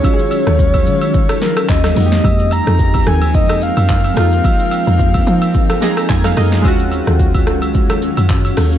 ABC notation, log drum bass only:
X:1
M:4/4
L:1/16
Q:"Swing 16ths" 1/4=109
K:Ebdor
V:1 name="Log drum bass" clef=bass
z3 E,,3 E,4 z2 E,,2 F,,2 | F,,3 F,,3 E,,2 F,,3 G,,3 F,,2 | z3 F,,3 F,4 z2 F,,2 G,,2 | E,,3 E,,3 D,,2 E,,3 G,,3 E,,2 |]